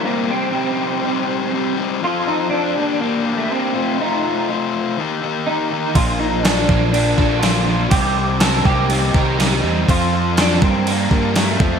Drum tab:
CC |--------|--------|--------|x-x-x-x-|
SD |--------|--------|--------|--o---o-|
BD |--------|--------|--------|o--o-o--|

CC |x-x-x-x-|x-x-x-x-|
SD |--o---o-|--o---o-|
BD |o--o-o--|o--o-o-o|